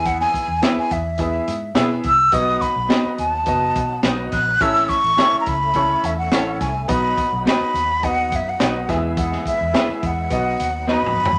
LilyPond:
<<
  \new Staff \with { instrumentName = "Flute" } { \time 4/4 \key b \mixolydian \tempo 4 = 105 fis''16 gis''8. e''16 gis''16 e''4. r8 e'''8 | dis'''8 b''4 a''4. r8 fis'''8 | e'''8 cis'''8.~ cis'''32 ais''32 b''4 e''16 fis''8. gis''8 | b''4 b''4 fis''8 e''16 fis''8. gis''8 |
fis''8 e''4 fis''4. b''4 | }
  \new Staff \with { instrumentName = "Clean electric guitar" } { \time 4/4 \key b \mixolydian r4 <b e' gis' b'>8 r4. <b e' gis' b'>8 r8 | r4 <b dis' fis' b'>8 r4. <b dis' fis' b'>8 r8 | r4 <cis' e' a' cis''>8 r4. <cis' e' a' cis''>8 r8 | r4 <b dis' fis' b'>8 r4. <b dis' fis' b'>8 r8 |
r4 <b e' gis' b'>8 r4. <b dis' fis' b'>8 r8 | }
  \new Staff \with { instrumentName = "Upright piano" } { \time 4/4 \key b \mixolydian <b e' gis' e''>8 r8 <b e' gis' e''>8 r8 <b e' gis' e''>8 r8 <b e' gis' e''>8 r8 | <b dis' fis' dis''>8 r8 <b dis' fis' dis''>8 r8 <b dis' fis' dis''>8 r8 <b dis' fis' dis''>8 r8 | <cis' e' a' e''>8 r8 <cis' e' a' e''>8 r8 <cis' e' a' cis''>8 r8 <cis' e' a' cis''>8 r8 | <b dis' fis' dis''>8 r8 <b dis' fis' dis''>8 r8 <b dis' fis' dis''>8 r8 <b dis' fis' dis''>8 <b e' gis' e''>8~ |
<b e' gis' e''>8 r8 <b e' gis' e''>8 r8 <b dis' fis' dis''>8 r8 <b dis' fis' dis''>8 r8 | }
  \new Staff \with { instrumentName = "Tonewheel organ" } { \time 4/4 \key b \mixolydian r1 | <fis dis'>1 | <a e'>1 | <fis dis'>2.~ <fis dis'>8 <gis e'>8~ |
<gis e'>2 <fis dis'>2 | }
  \new Staff \with { instrumentName = "Tonewheel organ" } { \time 4/4 \key b \mixolydian r1 | b1 | cis'1 | b1~ |
b1 | }
  \new Staff \with { instrumentName = "Fingered electric bass" } { \clef bass \time 4/4 \key b \mixolydian e,8 r16 e,16 r8 e,4 gis,8 b,8 c,8 | b,,8 r16 b,,16 r8 dis,8 fis,,8 b,8 b,,8 ais,,8 | a,,8 r16 a,,16 r8 cis,4 e,8 a,,8 c,8 | b,,8 r16 b,,16 r8 dis,4 fis,8 b,,8 e,8~ |
e,8 r16 e,16 r8 e,8 b,,8 dis,8. gis,,16 g,,8 | }
  \new DrumStaff \with { instrumentName = "Drums" } \drummode { \time 4/4 <hh bd>16 sn16 <hh bd>8 <hh sn>8 <hh bd>8 <hh bd>8 hh8 <hh sn>8 <hh bd>8 | <hh bd>8 <hh bd>8 <hh sn>8 hh8 <hh bd>8 <hh bd>8 <hh sn>8 <hh bd sn>8 | <hh bd>16 sn16 <hh bd>8 <hh sn>8 <hh bd>8 <hh bd>8 hh8 <hh sn>8 <hh bd sn>8 | <hh bd>8 <hh bd>8 <hh sn>8 hh8 <hh bd>8 <hh bd>8 <hh sn>8 <hh bd sn>8 |
<hh bd>16 sn16 <hh bd>8 <hh sn>8 <hh bd>8 <hh bd>8 hh8 \tuplet 3/2 { sn8 toml8 tomfh8 } | }
>>